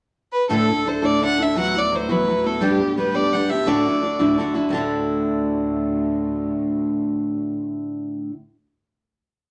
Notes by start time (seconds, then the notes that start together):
0.32 B4
0.48 D2 A2 D3 D4 E4 A4
0.68 D3 D4 E4 A4
0.85 D3 D4 E4 A4 C5
1.02 D2 A2 D3 D4 E4 A4 D5
1.21 D3 D4 E4 A4
1.25 F#5
1.38 D3 D4 E4 A4
1.42 E5
1.55 E3 F#3 B3 E4 F#4 F#5
1.75 B3 E4 F#4 D5
1.92 F#3 B3 E4 F#4 C5
2.09 E3 F#3 B3 E4 F#4 B4
2.28 F#3 B3 E4 F#4
2.44 B3 E4 F#4 A4
2.61 G3 B3 D4 G4
2.80 B3 D4 G4
2.97 G3 B3 D4 G4 B4
3.14 G3 B3 D4 G4 D5
3.33 G3 B3 D4 G4 F#5
3.50 B3 D4 G4 E5
3.66 D2 A2 D3 D4 E4 F#4 D5
3.86 D3 D4 E4 F#4
4.01 D3 D4 E4 F#4
4.19 D2 A2 D3 D4 E4 F#4
4.38 D3 D4 E4 F#4
4.54 D3 D4 E4 F#4
4.69 D2 A2 D3
4.74 D4 E4 F#4